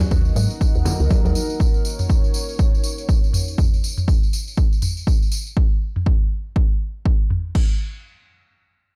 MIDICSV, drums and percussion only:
0, 0, Header, 1, 2, 480
1, 0, Start_track
1, 0, Tempo, 495868
1, 1550, Time_signature, 4, 2, 24, 8
1, 8669, End_track
2, 0, Start_track
2, 0, Title_t, "Drums"
2, 1, Note_on_c, 9, 63, 95
2, 6, Note_on_c, 9, 54, 37
2, 9, Note_on_c, 9, 45, 75
2, 98, Note_off_c, 9, 63, 0
2, 103, Note_off_c, 9, 54, 0
2, 106, Note_off_c, 9, 45, 0
2, 106, Note_on_c, 9, 54, 56
2, 110, Note_on_c, 9, 36, 118
2, 203, Note_off_c, 9, 54, 0
2, 206, Note_off_c, 9, 36, 0
2, 244, Note_on_c, 9, 54, 25
2, 341, Note_off_c, 9, 54, 0
2, 343, Note_on_c, 9, 63, 59
2, 350, Note_on_c, 9, 54, 88
2, 440, Note_off_c, 9, 63, 0
2, 446, Note_off_c, 9, 54, 0
2, 488, Note_on_c, 9, 54, 37
2, 584, Note_off_c, 9, 54, 0
2, 590, Note_on_c, 9, 36, 116
2, 593, Note_on_c, 9, 54, 54
2, 686, Note_off_c, 9, 36, 0
2, 690, Note_off_c, 9, 54, 0
2, 725, Note_on_c, 9, 54, 23
2, 821, Note_off_c, 9, 54, 0
2, 826, Note_on_c, 9, 64, 102
2, 829, Note_on_c, 9, 54, 96
2, 829, Note_on_c, 9, 63, 61
2, 831, Note_on_c, 9, 45, 73
2, 922, Note_off_c, 9, 64, 0
2, 925, Note_off_c, 9, 54, 0
2, 926, Note_off_c, 9, 63, 0
2, 928, Note_off_c, 9, 45, 0
2, 969, Note_on_c, 9, 54, 37
2, 1066, Note_off_c, 9, 54, 0
2, 1069, Note_on_c, 9, 36, 118
2, 1070, Note_on_c, 9, 54, 51
2, 1072, Note_on_c, 9, 63, 102
2, 1166, Note_off_c, 9, 36, 0
2, 1166, Note_off_c, 9, 54, 0
2, 1169, Note_off_c, 9, 63, 0
2, 1211, Note_on_c, 9, 63, 95
2, 1215, Note_on_c, 9, 54, 28
2, 1307, Note_off_c, 9, 63, 0
2, 1309, Note_off_c, 9, 54, 0
2, 1309, Note_on_c, 9, 54, 86
2, 1405, Note_off_c, 9, 54, 0
2, 1450, Note_on_c, 9, 54, 39
2, 1547, Note_off_c, 9, 54, 0
2, 1549, Note_on_c, 9, 36, 126
2, 1557, Note_on_c, 9, 54, 49
2, 1646, Note_off_c, 9, 36, 0
2, 1653, Note_off_c, 9, 54, 0
2, 1685, Note_on_c, 9, 54, 24
2, 1782, Note_off_c, 9, 54, 0
2, 1789, Note_on_c, 9, 54, 91
2, 1886, Note_off_c, 9, 54, 0
2, 1927, Note_on_c, 9, 54, 41
2, 1929, Note_on_c, 9, 45, 68
2, 2023, Note_off_c, 9, 54, 0
2, 2026, Note_off_c, 9, 45, 0
2, 2029, Note_on_c, 9, 36, 122
2, 2032, Note_on_c, 9, 54, 50
2, 2125, Note_off_c, 9, 36, 0
2, 2129, Note_off_c, 9, 54, 0
2, 2169, Note_on_c, 9, 54, 26
2, 2264, Note_off_c, 9, 54, 0
2, 2264, Note_on_c, 9, 54, 98
2, 2361, Note_off_c, 9, 54, 0
2, 2409, Note_on_c, 9, 54, 38
2, 2506, Note_off_c, 9, 54, 0
2, 2507, Note_on_c, 9, 54, 52
2, 2509, Note_on_c, 9, 36, 126
2, 2604, Note_off_c, 9, 54, 0
2, 2605, Note_off_c, 9, 36, 0
2, 2658, Note_on_c, 9, 54, 28
2, 2745, Note_off_c, 9, 54, 0
2, 2745, Note_on_c, 9, 54, 95
2, 2842, Note_off_c, 9, 54, 0
2, 2887, Note_on_c, 9, 54, 40
2, 2984, Note_off_c, 9, 54, 0
2, 2989, Note_on_c, 9, 36, 120
2, 2993, Note_on_c, 9, 54, 58
2, 3085, Note_off_c, 9, 36, 0
2, 3090, Note_off_c, 9, 54, 0
2, 3135, Note_on_c, 9, 54, 26
2, 3228, Note_on_c, 9, 45, 83
2, 3232, Note_off_c, 9, 54, 0
2, 3233, Note_on_c, 9, 54, 90
2, 3325, Note_off_c, 9, 45, 0
2, 3330, Note_off_c, 9, 54, 0
2, 3370, Note_on_c, 9, 54, 44
2, 3466, Note_off_c, 9, 54, 0
2, 3468, Note_on_c, 9, 36, 123
2, 3469, Note_on_c, 9, 45, 78
2, 3473, Note_on_c, 9, 54, 50
2, 3565, Note_off_c, 9, 36, 0
2, 3566, Note_off_c, 9, 45, 0
2, 3570, Note_off_c, 9, 54, 0
2, 3617, Note_on_c, 9, 54, 24
2, 3714, Note_off_c, 9, 54, 0
2, 3716, Note_on_c, 9, 54, 87
2, 3813, Note_off_c, 9, 54, 0
2, 3849, Note_on_c, 9, 45, 69
2, 3850, Note_on_c, 9, 54, 38
2, 3945, Note_off_c, 9, 45, 0
2, 3947, Note_off_c, 9, 54, 0
2, 3948, Note_on_c, 9, 36, 127
2, 3957, Note_on_c, 9, 54, 49
2, 4045, Note_off_c, 9, 36, 0
2, 4054, Note_off_c, 9, 54, 0
2, 4096, Note_on_c, 9, 54, 27
2, 4193, Note_off_c, 9, 54, 0
2, 4193, Note_on_c, 9, 54, 95
2, 4290, Note_off_c, 9, 54, 0
2, 4333, Note_on_c, 9, 54, 39
2, 4426, Note_off_c, 9, 54, 0
2, 4426, Note_on_c, 9, 54, 47
2, 4429, Note_on_c, 9, 36, 121
2, 4522, Note_off_c, 9, 54, 0
2, 4525, Note_off_c, 9, 36, 0
2, 4575, Note_on_c, 9, 54, 25
2, 4666, Note_off_c, 9, 54, 0
2, 4666, Note_on_c, 9, 54, 95
2, 4669, Note_on_c, 9, 45, 70
2, 4763, Note_off_c, 9, 54, 0
2, 4766, Note_off_c, 9, 45, 0
2, 4810, Note_on_c, 9, 54, 41
2, 4907, Note_off_c, 9, 54, 0
2, 4909, Note_on_c, 9, 36, 118
2, 4916, Note_on_c, 9, 54, 50
2, 5005, Note_off_c, 9, 36, 0
2, 5013, Note_off_c, 9, 54, 0
2, 5058, Note_on_c, 9, 54, 29
2, 5146, Note_off_c, 9, 54, 0
2, 5146, Note_on_c, 9, 54, 100
2, 5243, Note_off_c, 9, 54, 0
2, 5294, Note_on_c, 9, 54, 38
2, 5389, Note_on_c, 9, 36, 123
2, 5390, Note_off_c, 9, 54, 0
2, 5485, Note_off_c, 9, 36, 0
2, 5770, Note_on_c, 9, 45, 70
2, 5867, Note_off_c, 9, 45, 0
2, 5869, Note_on_c, 9, 36, 123
2, 5966, Note_off_c, 9, 36, 0
2, 6349, Note_on_c, 9, 36, 119
2, 6446, Note_off_c, 9, 36, 0
2, 6829, Note_on_c, 9, 36, 118
2, 6926, Note_off_c, 9, 36, 0
2, 7069, Note_on_c, 9, 45, 83
2, 7166, Note_off_c, 9, 45, 0
2, 7309, Note_on_c, 9, 36, 114
2, 7309, Note_on_c, 9, 49, 86
2, 7405, Note_off_c, 9, 36, 0
2, 7406, Note_off_c, 9, 49, 0
2, 8669, End_track
0, 0, End_of_file